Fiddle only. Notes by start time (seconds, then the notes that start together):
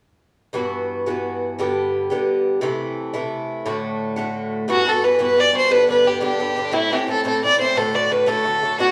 4.71 F#4
4.89 A4
5.04 B4
5.22 B4
5.40 D5
5.57 C5
5.71 B4
5.90 B4
6.07 G4
6.23 G4
6.74 E4
6.93 G4
7.11 A4
7.27 A4
7.45 D5
7.60 C5
7.77 A4
7.95 D5
8.12 B4
8.28 A4
8.80 F#4